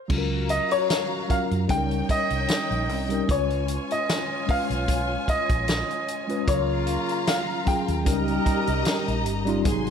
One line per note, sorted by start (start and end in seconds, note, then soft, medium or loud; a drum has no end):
0.08 0.58 C#2 medium
0.08 1.06 F#3 medium
0.08 1.07 C#4 medium
0.08 1.07 F4 medium
0.08 1.67 F#4 medium
0.08 0.17 A4 medium
0.08 1.67 F5 medium
0.08 1.66 A#5 medium
0.08 kick loud
0.08 crash medium
0.18 1.11 A#4 medium
0.49 0.70 D#5 medium
0.49 closed hi-hat medium
0.71 1.32 C#5 medium
0.71 closed hi-hat soft
0.90 snare loud
0.90 closed hi-hat medium
1.28 1.69 F#3 medium
1.28 1.68 C#4 medium
1.28 1.70 F4 medium
1.28 1.70 A#4 medium
1.28 1.40 F5 medium
1.28 muted fingered electric bass stroke soft
1.28 kick medium
1.28 closed hi-hat medium
1.51 1.66 F#2 medium
1.51 closed hi-hat soft
1.68 2.01 C#2 loud
1.68 2.81 G3 medium
1.68 2.81 C#4 medium
1.68 2.82 D#4 medium
1.68 3.26 D#4 medium
1.68 1.77 G#4 medium
1.68 3.26 C#5 medium
1.68 3.26 G5 medium
1.68 2.11 G5 loud
1.68 kick medium
1.68 closed hi-hat medium
1.77 2.86 A#4 medium
1.91 closed hi-hat soft
2.09 3.33 D#5 loud
2.09 muted fingered electric bass stroke soft
2.09 kick medium
2.09 closed hi-hat medium
2.30 2.45 C2 medium
2.30 closed hi-hat soft
2.48 snare loud
2.48 closed hi-hat medium
2.71 2.89 A#1 medium
2.71 closed hi-hat soft
2.89 3.20 C2 medium
2.89 open hi-hat soft
3.08 3.24 G3 medium
3.08 3.25 C#4 medium
3.08 3.25 D#4 medium
3.08 3.26 A#4 medium
3.08 closed hi-hat soft
3.27 3.77 C#2 medium
3.27 4.25 G#3 medium
3.27 4.25 C#4 medium
3.27 6.43 F4 medium
3.27 4.26 F4 medium
3.27 4.26 B4 medium
3.27 6.43 C#5 medium
3.27 3.93 C#5 medium
3.27 6.43 G#5 medium
3.27 kick loud
3.27 closed hi-hat medium
3.50 closed hi-hat soft
3.68 closed hi-hat medium
3.91 4.51 D#5 medium
3.91 closed hi-hat soft
4.09 snare loud
4.09 closed hi-hat medium
4.47 5.76 G#3 medium
4.47 5.76 C#4 medium
4.47 5.77 F4 medium
4.47 5.77 B4 medium
4.47 5.25 F5 loud
4.47 muted fingered electric bass stroke soft
4.47 kick medium
4.47 open hi-hat medium
4.70 5.16 B1 medium
4.70 closed hi-hat soft
4.88 kick medium
4.88 closed hi-hat medium
5.28 6.52 D#5 loud
5.28 muted fingered electric bass stroke soft
5.28 kick medium
5.28 closed hi-hat medium
5.49 5.81 A#1 medium
5.49 kick medium
5.49 closed hi-hat soft
5.68 snare loud
5.68 closed hi-hat medium
5.90 closed hi-hat soft
6.08 closed hi-hat medium
6.27 6.43 G#3 medium
6.27 6.43 C#4 medium
6.27 6.44 F4 medium
6.27 6.44 B4 medium
6.27 closed hi-hat soft
6.46 6.96 C#2 medium
6.46 7.64 C#3 medium
6.46 7.43 F#3 medium
6.46 7.64 A#3 medium
6.46 7.44 C#4 medium
6.46 7.64 F4 medium
6.46 7.44 F4 medium
6.46 8.04 F4 medium
6.46 7.45 A#4 medium
6.46 7.24 C#5 medium
6.46 8.04 F5 medium
6.46 8.03 A#5 medium
6.46 kick loud
6.46 closed hi-hat medium
6.87 closed hi-hat medium
7.09 closed hi-hat soft
7.27 7.68 F5 medium
7.27 snare loud
7.27 closed hi-hat loud
7.65 8.06 F#3 medium
7.65 8.05 C#4 medium
7.65 8.07 F4 medium
7.65 8.07 G#4 medium
7.65 9.22 G5 medium
7.65 muted fingered electric bass stroke soft
7.65 kick medium
7.65 closed hi-hat medium
7.88 8.06 D#2 medium
7.88 closed hi-hat soft
8.05 8.38 C#2 loud
8.05 9.18 G3 medium
8.05 9.23 G3 medium
8.05 9.18 C#4 medium
8.05 9.23 D#4 medium
8.05 9.19 D#4 medium
8.05 9.62 G4 medium
8.05 9.23 A#4 medium
8.05 9.19 A#4 medium
8.05 9.62 D#5 medium
8.05 9.63 A#5 medium
8.05 kick medium
8.05 closed hi-hat medium
8.28 closed hi-hat soft
8.46 muted fingered electric bass stroke soft
8.46 kick medium
8.46 closed hi-hat medium
8.67 8.82 C2 medium
8.67 closed hi-hat soft
8.85 snare loud
8.85 closed hi-hat medium
9.08 9.26 A#1 medium
9.08 closed hi-hat soft
9.26 9.65 G1 medium
9.26 closed hi-hat medium
9.45 9.61 G3 medium
9.45 9.61 C#4 medium
9.45 9.62 D#4 medium
9.45 9.62 F4 loud
9.45 closed hi-hat soft
9.64 9.90 G#1 medium
9.64 9.90 C3 medium
9.64 9.90 D#3 medium
9.64 9.90 F#3 medium
9.64 9.72 B3 medium
9.64 9.90 D#4 medium
9.64 9.90 F#4 medium
9.64 9.90 G#4 medium
9.64 9.90 G#5 medium
9.64 9.90 C6 medium
9.64 kick loud
9.64 closed hi-hat medium
9.71 9.90 C3 medium
9.87 closed hi-hat soft